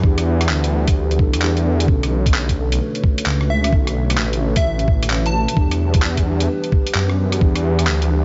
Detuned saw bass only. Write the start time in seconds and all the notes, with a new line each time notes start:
0.03 E2
0.49 D2
1.19 B1
1.34 E2
1.88 B1
3.26 C#2
3.72 B1
4.17 A1
5.57 E2
6.95 F#2
7.41 E2
7.87 D2